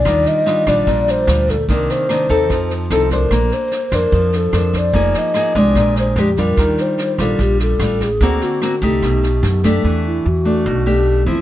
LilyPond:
<<
  \new Staff \with { instrumentName = "Alto flute" } { \time 4/4 \key ees \lydian \tempo 4 = 147 d''8 ees''4 d''4 c''4 a'8 | bes'8 c''2 r8 a'8 bes'8~ | bes'8 c''4 bes'4 a'8 bes'8 d''8~ | d''8 ees''4 d''4 c''8 g'8 bes'8~ |
bes'8 c''4 a'8 g'8 a'4 aes'8~ | aes'8 fis'4 g'2 r8 | \key e \minor r8 e'8 fis'4. g'4 e'8 | }
  \new Staff \with { instrumentName = "Nylon-string guitar" } { \time 4/4 \key ees \lydian << { <g d' f'>4 <g d' f'>8 <g d' f'>4. <g d' f'>8 r8 | <ees bes d'>4 <ees bes d'>8 <c' ees' a'>4. <c' ees' a'>8 <d' c''>8~ | <d' c''>4 r8 <d' c''>4. <d' a' c''>4 | <bes ees' aes'>4 <bes ees' aes'>8 <aes d' g'>4. <aes d' g'>8 <g d' f'>8~ |
<g d' f'>4. <g d' f'>4. <g d' f'>8 r8 | <bes c' fis'>4 <bes c' fis'>8 <a ees' g'>2 <a d' g'>8~ | \key e \minor <a d' g'>4 r8 <a d'>4 <a d' g'>4 <f c' e'>8 | } \\ { ees2 bes,2 | c2 f2 | bes2 f2 | f2 bes,2 |
ees2 r2 | d2 b,2 | e2 b,2 | } >> }
  \new Staff \with { instrumentName = "Upright bass" } { \clef bass \time 4/4 \key ees \lydian ees,8 r4 bes,,8 bes,,4 d,4 | c,8 r4 ees,8 f,4 c,4 | bes,,8 r4 f,8 f,4 f,4 | f,,8 r4 c,8 bes,,4 f,4 |
ees,8 r4 bes,,8 bes,,4 a,,4 | d,8 r4 c,8 b,,4 fis,4 | \key e \minor e,4 e,4 b,,4. e,8 | }
  \new DrumStaff \with { instrumentName = "Drums" } \drummode { \time 4/4 <bd ss sn>8 sn8 sn8 <bd ss sn>8 <bd sn>8 sn8 <ss sn>8 <bd sn>8 | <bd sn>8 sn8 <ss sn>8 <bd sn>8 <bd ss sn>8 sn8 sn8 <bd sn>8 | <bd ss sn>8 sn8 sn8 <bd ss sn>8 <bd sn>8 sn8 <ss sn>8 <bd sn>8 | <bd sn>8 sn8 <ss sn>8 <bd sn>8 <bd ss sn>8 sn8 sn8 <bd sn>8 |
<bd ss sn>8 sn8 sn8 <bd ss sn>8 <bd sn>8 sn8 <ss sn>8 <bd sn>8 | <bd sn>8 sn8 <ss sn>8 <bd sn>8 <bd ss sn>8 sn8 sn8 <bd sn>8 | r4 r4 r4 r4 | }
>>